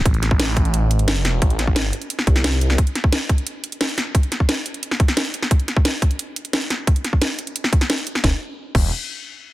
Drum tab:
CC |----------------|----------------|----------------|----------------|
HH |xxx-x-xxx-xxxxx-|xxx-x-xxx-xxxxx-|xxx-x-xxx-xxxxx-|xxx-x-xxx-xxxxx-|
SD |--o-o-------o-o-|--o-o----o-oo--o|--o-o-------o-o-|--o-o----o-oo--o|
BD |o--o--o---------|o--o------o-----|o--o--o---------|o--o------o-----|

CC |----------------|----------------|------x---------|
HH |xxx-x-xxx-xxxxx-|xxx-x-xxx-xxxxx-|----------------|
SD |--o-o-------o-o-|--o-o----o-oo--o|o---------------|
BD |o--o--o---------|o--o------o-----|o-----o---------|